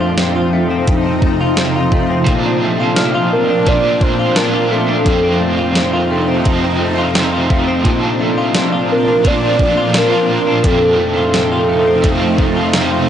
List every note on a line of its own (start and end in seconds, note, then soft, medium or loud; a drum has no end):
0.00 0.87 F2 medium
0.00 2.24 C3 medium
0.00 7.81 F3 medium
0.00 0.53 A3 medium
0.00 0.17 C4 medium
0.00 10.61 C4 medium
0.00 2.24 D#4 medium
0.00 0.35 F4 medium
0.18 0.69 C4 medium
0.18 snare medium
0.18 closed hi-hat medium
0.36 1.40 F4 medium
0.53 1.23 A3 soft
0.70 1.04 C4 medium
0.87 2.27 F2 medium
0.87 kick medium
0.87 closed hi-hat medium
1.06 1.57 C4 soft
1.22 1.92 A3 soft
1.22 kick medium
1.41 1.75 F4 medium
1.57 2.09 C4 soft
1.57 snare loud
1.57 closed hi-hat medium
1.76 2.80 F4 medium
1.92 2.62 A3 medium
1.92 kick medium
2.10 2.34 C4 medium
2.25 3.65 A#2 medium
2.25 5.03 A#2 medium
2.25 3.66 A#2 medium
2.25 3.65 F3 medium
2.25 5.03 D4 medium
2.25 kick medium
2.25 closed hi-hat medium
2.30 3.67 D4 medium
2.30 3.69 F4 medium
2.46 2.96 D4 medium
2.63 3.70 A3 soft
2.80 3.14 F4 medium
2.96 3.48 D4 medium
2.96 4.61 F6 soft
2.96 snare loud
2.96 closed hi-hat medium
3.15 4.19 F4 medium
3.32 3.69 A#4 medium
3.49 3.83 D4 medium
3.65 5.06 A#2 medium
3.65 4.35 F3 medium
3.65 5.08 A3 medium
3.65 4.37 D4 medium
3.65 4.04 D5 loud
3.65 kick medium
3.65 closed hi-hat medium
3.70 4.39 F4 medium
3.84 4.35 D4 soft
4.01 4.39 C5 medium
4.01 kick medium
4.19 4.54 F4 medium
4.35 5.07 F3 medium
4.35 4.88 D4 medium
4.35 5.07 D4 medium
4.35 4.73 A#4 loud
4.35 snare loud
4.35 closed hi-hat medium
4.39 5.10 F4 medium
4.54 5.58 F4 medium
4.71 5.40 A3 medium
4.71 5.41 A4 medium
4.89 5.13 D4 medium
5.04 6.45 F2 medium
5.04 7.82 C3 medium
5.04 6.45 C3 medium
5.04 6.43 D#3 medium
5.04 7.82 D#4 medium
5.04 kick medium
5.04 closed hi-hat medium
5.09 6.45 A3 medium
5.09 6.46 C4 medium
5.09 6.48 F4 medium
5.23 5.74 C4 medium
5.41 6.11 A3 medium
5.58 5.93 F4 medium
5.75 6.27 C4 medium
5.75 snare medium
5.75 closed hi-hat medium
5.93 6.98 F4 medium
6.11 6.80 A3 soft
6.28 6.62 C4 medium
6.44 7.85 F2 medium
6.44 7.12 D#3 medium
6.44 7.15 A3 medium
6.44 7.15 C4 medium
6.44 kick medium
6.44 closed hi-hat medium
6.48 7.18 F4 medium
6.64 7.15 C4 medium
6.81 7.49 A3 medium
6.98 7.32 F4 medium
7.14 7.84 D#3 medium
7.14 7.86 A3 medium
7.14 7.66 C4 medium
7.14 7.86 C4 medium
7.14 snare loud
7.14 closed hi-hat medium
7.18 7.90 F4 medium
7.33 8.37 F4 medium
7.50 8.20 A3 medium
7.50 kick medium
7.67 7.92 C4 medium
7.83 9.24 A#2 medium
7.83 10.61 A#2 medium
7.83 9.24 A#2 medium
7.83 10.61 F3 medium
7.83 9.23 F3 medium
7.83 10.61 D4 medium
7.83 kick medium
7.83 closed hi-hat medium
7.88 9.25 D4 medium
7.88 9.27 F4 medium
8.03 8.54 D4 medium
8.21 9.28 A3 medium
8.38 8.72 F4 medium
8.54 9.06 D4 medium
8.54 snare loud
8.54 closed hi-hat medium
8.72 9.77 F4 medium
8.92 9.28 A#4 medium
9.08 9.41 D4 medium
9.23 10.64 A#2 medium
9.23 9.93 F3 medium
9.23 10.66 A3 medium
9.23 9.95 D4 medium
9.23 9.96 D5 loud
9.23 kick medium
9.23 closed hi-hat medium
9.27 9.97 F4 medium
9.42 9.94 D4 soft
9.59 kick medium
9.77 10.12 F4 medium
9.93 10.65 F3 medium
9.93 10.46 D4 medium
9.93 10.65 D4 medium
9.93 snare loud
9.93 closed hi-hat medium
9.97 10.68 F4 medium
9.97 10.68 A#4 loud
10.12 11.17 F4 medium
10.47 10.71 D4 medium
10.62 12.03 F2 medium
10.62 13.09 C3 medium
10.62 12.03 C3 medium
10.62 12.01 D#3 medium
10.62 13.09 F3 medium
10.62 13.09 A3 medium
10.62 13.09 D#4 medium
10.62 kick medium
10.62 closed hi-hat medium
10.66 12.04 A3 medium
10.66 12.04 C4 medium
10.66 12.06 F4 medium
10.66 13.09 A4 medium
10.82 11.33 C4 soft
10.99 11.69 A3 medium
11.17 11.52 F4 medium
11.34 11.86 C4 soft
11.34 snare medium
11.34 closed hi-hat medium
11.52 12.56 F4 medium
11.69 12.39 A3 medium
11.87 12.21 C4 medium
12.02 13.09 F2 medium
12.02 12.71 D#3 medium
12.02 12.73 A3 medium
12.02 12.74 C4 medium
12.02 kick medium
12.02 closed hi-hat medium
12.07 12.75 F4 medium
12.22 12.72 C4 medium
12.38 13.08 A3 medium
12.38 kick medium
12.56 12.91 F4 medium
12.72 13.09 D#3 medium
12.72 13.09 A3 medium
12.72 13.09 C4 medium
12.72 snare loud
12.72 closed hi-hat medium
12.77 13.09 F4 medium
12.91 13.09 F4 medium